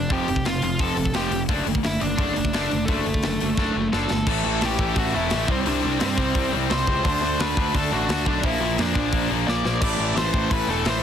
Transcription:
Already playing: lead electric guitar D5
0.10 picked electric bass F1, distorted electric guitar F2 C3 F3, lead electric guitar G4 G5, kick, open hi-hat
0.28 picked electric bass F1, distorted electric guitar F2 C3, open hi-hat
0.36 kick
0.45 picked electric bass F1, distorted electric guitar F2 C3, lead electric guitar F4 F5, snare, open hi-hat
0.62 picked electric bass F1, distorted electric guitar F2 C3, lead electric guitar F4 F5, open hi-hat
0.79 picked electric bass F1, distorted electric guitar F2 C3 F3, lead electric guitar A4 A5, kick, open hi-hat
0.97 picked electric bass F1, distorted electric guitar F2 C3, open hi-hat
1.05 kick
1.14 picked electric bass F1, distorted electric guitar F2 C3 F3, lead electric guitar G4 G5, snare, open hi-hat
1.31 picked electric bass F1, distorted electric guitar F2 C3, open hi-hat
1.49 picked electric bass F#1, distorted electric guitar D3 A3 D4, kick, open hi-hat
1.66 picked electric bass F#1, distorted electric guitar D3 A3, open hi-hat
1.75 kick
1.83 picked electric bass F#1, distorted electric guitar D3 A3, lead electric guitar E4 E5, snare, open hi-hat
2.00 picked electric bass F#1, distorted electric guitar D3 A3, lead electric guitar D4 D5, open hi-hat
2.18 picked electric bass F#1, distorted electric guitar D3 A3 D4, kick, open hi-hat
2.34 picked electric bass F#1, distorted electric guitar D3 A3, lead electric guitar D4 D5, open hi-hat
2.45 kick
2.53 picked electric bass F#1, distorted electric guitar D3 A3 D4, snare, open hi-hat
2.71 picked electric bass F#1, distorted electric guitar D3 A3, open hi-hat
2.85 picked electric bass F#1, distorted electric guitar D3 A3, lead electric guitar A3 A4, kick, open hi-hat
2.90 distorted electric guitar D4
3.06 picked electric bass F#1, distorted electric guitar D3 A3, open hi-hat
3.14 kick
3.23 picked electric bass F#1, distorted electric guitar D3 A3, snare, open hi-hat
3.40 picked electric bass F#1, distorted electric guitar D3 A3, open hi-hat
3.57 picked electric bass F#1, distorted electric guitar D3 A3 D4, kick, snare
3.75 picked electric bass F#1, distorted electric guitar D3 A3
3.93 picked electric bass F#1, distorted electric guitar D3 A3 D4, lead electric guitar A4 A5, snare
4.10 picked electric bass G1, distorted electric guitar D3 A3, snare
4.27 picked electric bass A1, distorted electric guitar A2 E3 A3, lead electric guitar A4 A5, kick, crash
4.44 picked electric bass A1, distorted electric guitar A2 E3 A3
4.61 picked electric bass A1, distorted electric guitar A2 E3 A3, lead electric guitar G4, snare, open hi-hat
4.65 lead electric guitar G5
4.79 picked electric bass A1, distorted electric guitar A2 E3 A3, kick
4.95 picked electric bass A1, distorted electric guitar A2 E3 A3, lead electric guitar F#4 F#5, kick, open hi-hat
5.13 picked electric bass E1, distorted electric guitar A2 E3 A3, lead electric guitar E4 E5
5.30 picked electric bass A1, distorted electric guitar A2 E3 A3, snare, open hi-hat
5.47 picked electric bass C2, distorted electric guitar C3 G3 C4, lead electric guitar C4, kick
5.51 lead electric guitar C5
5.64 picked electric bass C2, distorted electric guitar C3 G3 C4, lead electric guitar D4, open hi-hat
5.68 lead electric guitar D5
5.81 picked electric bass C2, distorted electric guitar C3 G3 C4
5.99 picked electric bass G2, distorted electric guitar C3 G3 C4, lead electric guitar C4 C5, snare, open hi-hat
6.17 picked electric bass C2, distorted electric guitar C3 G3 C4, kick
6.35 picked electric bass C2, distorted electric guitar C3 G3 C4, kick, open hi-hat
6.52 picked electric bass C2, distorted electric guitar C3 G3 C4
6.69 picked electric bass C2, distorted electric guitar C3 G3 C4, lead electric guitar C5 C6, snare, open hi-hat
6.86 picked electric bass C#2, distorted electric guitar C3 G3 C4, kick
7.04 picked electric bass D2, distorted electric guitar D3 A3 D4, lead electric guitar C5 C6, kick, open hi-hat
7.21 picked electric bass D2, distorted electric guitar D3 A3 D4
7.38 picked electric bass D2, distorted electric guitar D3 A3 D4, lead electric guitar B4 B5, snare, open hi-hat
7.56 picked electric bass D2, distorted electric guitar D3 A3 D4, kick
7.74 picked electric bass D2, distorted electric guitar D3 A3 D4, lead electric guitar A4 A5, kick, open hi-hat
7.91 picked electric bass A1, distorted electric guitar D3 A3 D4, lead electric guitar F#4 F#5
8.08 picked electric bass D2, distorted electric guitar D3 A3 D4, snare, open hi-hat
8.25 picked electric bass B1, distorted electric guitar D3 A3 D4, lead electric guitar D4 D5, kick
8.43 picked electric bass A#1, distorted electric guitar A#2 F3 A#3, lead electric guitar E4 E5, kick, open hi-hat
8.60 picked electric bass A#1, distorted electric guitar A#2 F3 A#3
8.77 picked electric bass F2, distorted electric guitar A#2 F3 A#3, lead electric guitar D4 D5, snare, open hi-hat
8.94 picked electric bass A#1, distorted electric guitar A#2 F3 A#3, kick
9.12 picked electric bass A#1, distorted electric guitar A#2 F3 A#3, kick, open hi-hat
9.30 picked electric bass A#1, distorted electric guitar A#2 F3 A#3
9.47 picked electric bass A#1, distorted electric guitar A#2 F3 A#3, lead electric guitar D5 D6, snare
9.64 picked electric bass A#1, distorted electric guitar A#2 F3 A#3, snare
9.81 picked electric bass A1, distorted electric guitar A2 E3 A3, lead electric guitar D5 D6, kick, splash, crash
9.98 picked electric bass A1, distorted electric guitar A2 E3 A3
10.15 picked electric bass A1, distorted electric guitar A2 E3 A3, lead electric guitar C5 C6, snare, open hi-hat
10.34 picked electric bass A1, distorted electric guitar A2 E3 A3, kick
10.51 picked electric bass A1, distorted electric guitar A2 E3 A3, lead electric guitar B4 B5, kick, open hi-hat
10.68 picked electric bass E1, distorted electric guitar A2 E3 A3, lead electric guitar A4 A5
10.85 picked electric bass A1, distorted electric guitar A2 E3 A3, lead electric guitar C5 C6, snare, open hi-hat

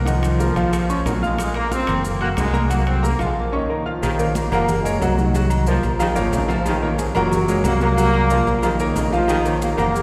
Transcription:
Already playing: fingered electric bass C2, trombone section F3
0.05 grand piano D#3 D#4 F#5, high bongo, high conga, high timbale, maracas
0.23 high conga, high timbale, maracas
0.39 grand piano A#3 A#4 A#5, high bongo, high conga, low timbale, maracas
0.56 fingered electric bass A#1, grand piano F3 F4 F5, high bongo, high timbale, maracas
0.73 high bongo, high conga, high timbale, maracas
0.89 grand piano C#4 C#5 C#6, high bongo, high conga, maracas
1.06 fingered electric bass A#1, trombone section F#3, grand piano A#3 A#4 A#5, high bongo, low bongo, high conga, high timbale, low timbale, maracas
1.22 trombone section G#3, grand piano F4 F5 F6, high bongo, high conga, maracas
1.38 trombone section G#3, high bongo, high conga, high timbale, maracas
1.54 grand piano A#3 A#4 A#5, trombone section A#3, high conga, high timbale
1.71 trombone section C4, grand piano F4 F5 F6, high bongo, high conga, low timbale, maracas
1.87 fingered electric bass F#1, grand piano A#3 A#4 A#5, high bongo, high conga, low conga, high timbale, maracas
2.04 trombone section A#3, high bongo, high conga, low conga, maracas
2.21 trombone section A#3, grand piano F#4 F#5 F#6, high bongo, high conga, high timbale
2.37 fingered electric bass C2, trombone section G#3, high bongo, low bongo, high conga, high timbale, low timbale, maracas
2.53 grand piano A#3 A#4 A#5, high bongo, high conga, maracas
2.70 grand piano F#3 F#4 F#5, trombone section A#3, high bongo, high timbale, maracas
2.87 trombone section C4, high conga, high timbale
3.02 grand piano A#3 A#4 A#5, trombone section A#3, high bongo, high conga, low timbale, maracas
3.19 fingered electric bass A#1, grand piano F3 F4 F5, trombone section G#3, high bongo, high timbale, maracas
3.38 trombone section A#3
3.52 trombone section D#3 D#4, grand piano C#4 C#5 C#6
3.69 grand piano A#3 A#4 A#5
3.86 trombone section F3 F4, grand piano F4 F5 F6
4.02 fingered electric bass A#1, trombone section D#3, cowbell, high conga, low agogo, maracas
4.19 grand piano A#3 A#4 C#5, high conga, maracas
4.34 trombone section A#2 A#3, cowbell, high conga, low timbale, low agogo, maracas
4.51 fingered electric bass F#1, trombone section A#2 F3 A#3, grand piano A#3 A#4 F#5, cowbell, high conga, low conga, low agogo, maracas
4.68 cowbell, high conga, low conga, maracas
4.83 trombone section G#2 G#3, grand piano A#3 A#4 C#5, high conga, maracas
4.99 fingered electric bass C2, trombone section F#2 F#3, grand piano F#3 F#4 F#5, cowbell, high conga, low timbale, low agogo, maracas
5.17 trombone section D#3 F#3 D#4, cowbell, high conga, maracas
5.34 grand piano F#3 F#4 F#5, cowbell, high conga, low agogo, maracas
5.50 low agogo, maracas
5.66 trombone section F3, grand piano A#3 A#4 C5, cowbell, high conga, low timbale, maracas
5.83 fingered electric bass A#1, high conga, low agogo, maracas
5.99 trombone section D#3, grand piano F3 F4 F5, cowbell, high conga, low agogo, maracas
6.15 fingered electric bass G#1, trombone section F3 F4, grand piano A#3 A#4 C#5, high conga, maracas
6.33 fingered electric bass A#1, trombone section C#3, cowbell, high conga, low timbale, low agogo, maracas
6.48 grand piano F3 F4 F5, trombone section F3 F4, cowbell, high conga, maracas
6.65 trombone section D#3, cowbell, high conga, low agogo, maracas
6.82 grand piano A#3 A#4 C#5, high conga
6.98 trombone section G#2 G#3, cowbell, high conga, low timbale, low agogo, maracas
7.15 fingered electric bass F#1, trombone section F#2 F3 F#3, grand piano A#3 A#4 F#5, cowbell, high conga, low conga, low agogo, maracas
7.32 cowbell, high conga, low conga, maracas
7.48 trombone section G#3, grand piano A#3 A#4 C#5, high conga, maracas
7.64 fingered electric bass C2, trombone section A#2 A#3, grand piano F#3 F#4 F#5, cowbell, high conga, low timbale, low agogo, maracas
7.80 trombone section F#3 A#3, cowbell, high conga, maracas
7.84 trombone section A#2
7.97 grand piano F#3 F#4 F#5, cowbell, high conga, low agogo, maracas
8.14 low agogo
8.30 trombone section F3, grand piano A#3 A#4 C5, cowbell, high conga, low timbale, maracas
8.46 fingered electric bass A#1, high conga, low agogo, maracas
8.62 trombone section D#3, grand piano F3 F4 F5, cowbell, high conga, low agogo, maracas
8.79 trombone section D#3 D#4, grand piano A#3 A#4 C#5, high conga, maracas
8.95 fingered electric bass A#1, trombone section C#3, cowbell, high conga, low timbale, low agogo, maracas
9.12 grand piano F3 F4 F5, trombone section F3 F4, cowbell, maracas
9.28 trombone section D#3, cowbell, low agogo, maracas
9.45 grand piano A#3 A#4 C#5, high conga, maracas
9.61 trombone section A#2 A#3, cowbell, high conga, low timbale, low agogo, maracas
9.77 fingered electric bass F#1, trombone section A#2 F3 A#3, grand piano A#3 A#4 F#5, cowbell, high conga, low conga, low agogo, maracas
9.94 cowbell, high conga, maracas

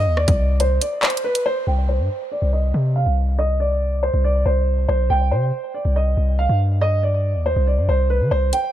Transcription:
Already playing: grand piano D#5
0.06 808-style bass D#2
0.17 grand piano D5, cross-stick
0.28 808-style bass C2, kick, closed hi-hat
0.60 grand piano C5, closed hi-hat
0.81 grand piano D5, closed hi-hat
1.03 grand piano C5, clap, closed hi-hat
1.10 closed hi-hat
1.17 closed hi-hat
1.24 grand piano B4
1.35 closed hi-hat
1.46 grand piano C5
1.67 808-style bass C2, grand piano G5
1.89 grand piano C5
1.99 808-style bass G2
2.32 grand piano D5
2.42 808-style bass C2
2.53 grand piano D#5
2.74 808-style bass C3
2.96 grand piano F5
3.06 808-style bass C2
3.39 grand piano D#5
3.60 grand piano D5
4.03 grand piano C5
4.14 808-style bass C2
4.24 grand piano D5
4.46 808-style bass C2, grand piano C5
4.89 808-style bass B1, grand piano C5
5.10 808-style bass C2, grand piano G5
5.31 808-style bass C3, grand piano C5
5.74 grand piano D5
5.85 808-style bass C2
5.96 grand piano D#5
6.17 808-style bass C2
6.39 grand piano F5
6.49 808-style bass G2
6.81 grand piano D#5
7.03 grand piano D5
7.35 808-style bass D#2
7.46 grand piano C5
7.56 808-style bass C2
7.67 grand piano D5
7.78 808-style bass G2
7.89 808-style bass C2, grand piano C5
8.10 grand piano B4
8.21 808-style bass D#3
8.31 808-style bass C2, grand piano C5
8.53 grand piano G5, closed hi-hat

